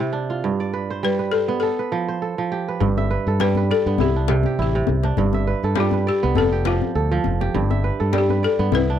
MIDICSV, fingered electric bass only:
0, 0, Header, 1, 2, 480
1, 0, Start_track
1, 0, Tempo, 592300
1, 347, Time_signature, 4, 2, 24, 8
1, 7286, End_track
2, 0, Start_track
2, 0, Title_t, "Fingered electric bass"
2, 0, Program_c, 0, 33
2, 2276, Note_on_c, 0, 31, 82
2, 2560, Note_off_c, 0, 31, 0
2, 2647, Note_on_c, 0, 43, 78
2, 3014, Note_off_c, 0, 43, 0
2, 3130, Note_on_c, 0, 43, 82
2, 3211, Note_off_c, 0, 43, 0
2, 3241, Note_on_c, 0, 36, 91
2, 3605, Note_off_c, 0, 36, 0
2, 3717, Note_on_c, 0, 33, 81
2, 3899, Note_off_c, 0, 33, 0
2, 3959, Note_on_c, 0, 36, 79
2, 4140, Note_off_c, 0, 36, 0
2, 4194, Note_on_c, 0, 31, 90
2, 4479, Note_off_c, 0, 31, 0
2, 4566, Note_on_c, 0, 43, 79
2, 4933, Note_off_c, 0, 43, 0
2, 5056, Note_on_c, 0, 36, 82
2, 5134, Note_off_c, 0, 36, 0
2, 5152, Note_on_c, 0, 29, 88
2, 5519, Note_off_c, 0, 29, 0
2, 5635, Note_on_c, 0, 38, 82
2, 5817, Note_off_c, 0, 38, 0
2, 5879, Note_on_c, 0, 29, 85
2, 6059, Note_off_c, 0, 29, 0
2, 6118, Note_on_c, 0, 31, 93
2, 6399, Note_off_c, 0, 31, 0
2, 6487, Note_on_c, 0, 43, 78
2, 6851, Note_off_c, 0, 43, 0
2, 6962, Note_on_c, 0, 43, 84
2, 7044, Note_off_c, 0, 43, 0
2, 7067, Note_on_c, 0, 36, 92
2, 7286, Note_off_c, 0, 36, 0
2, 7286, End_track
0, 0, End_of_file